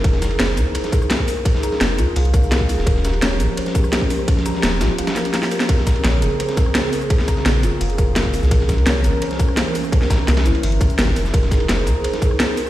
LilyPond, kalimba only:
\new Staff \with { instrumentName = "Kalimba" } { \time 4/4 \key bes \dorian \tempo 4 = 170 bes'16 r16 bes''8 c''8 bes''8 c''16 r16 bes'8 c''8 bes'16 r16 | aes'16 r16 bes''8 aes'8 f'8 f''8 bes'8 bes'8 aes'8 | bes'16 r16 bes''8 des''8 bes''8 c''16 r16 bes'8 c''8 bes'16 r16 | g'16 r16 bes''8 r8 f'8 f''8 bes'8 bes''8 bes'16 r16 |
bes'16 r16 bes''8 des''8 bes''8 c''16 r16 bes'8 c''8 bes'16 r16 | aes'16 r16 bes''8 aes'8 f'8 f''8 bes'8 bes'8 aes'8 | bes'16 r16 bes''8 des''8 bes''8 c''16 r16 bes'8 c''8 bes'16 r16 | g'16 r16 bes''8 g'8 e'8 e''8 g'8 bes'8 bes'8 |
bes'16 r16 bes''8 c''8 bes''8 c''16 r16 bes'8 c''8 bes'16 r16 | }